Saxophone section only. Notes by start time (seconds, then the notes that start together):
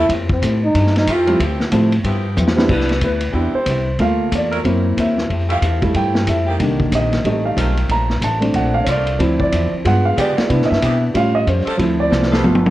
1.08 F3 A3 F4 G4
1.40 F3 C4 E4 G4
2.04 F3 B3 E4 G4
2.69 G3 E4 B4
3.32 G3 C4 E4 G4
4.51 F#3 C4 E4 A#4
5.49 F3 A3 E4 G4
6.47 D#3 A#3 C4 G4
7.57 D#3 A3 C4 F4
8.88 D3 A3 A#3 F4
10.17 F3 G#3 B3 G4
10.83 E3 B3 C4 G4
11.66 F3 C4 D4 A4
12.31 G3 B3 F4 A4